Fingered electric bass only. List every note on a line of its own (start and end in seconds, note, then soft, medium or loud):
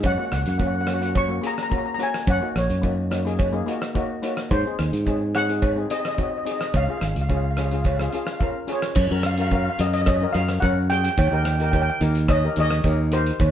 0.04 0.16 F#2 medium
0.32 0.44 C#2 medium
0.47 1.38 F#2 medium
2.27 2.39 F#2 loud
2.56 2.68 A#1 medium
2.70 3.62 F#2 medium
4.51 4.63 G#2 loud
4.79 4.91 D#2 medium
4.93 5.85 G#2 medium
6.74 6.86 C#2 loud
7.02 7.13 G#1 medium
7.16 8.07 C#2 medium
8.96 9.08 F#2 loud
9.11 9.68 F#2 medium
9.79 10.25 F#2 loud
10.35 10.58 F#2 medium
10.62 11.08 F#2 medium
11.18 11.30 D#2 loud
11.32 11.89 D#2 medium
12.01 12.47 D#2 loud
12.57 12.80 D#2 medium
12.84 13.30 D#2 medium
13.40 13.51 D#2 loud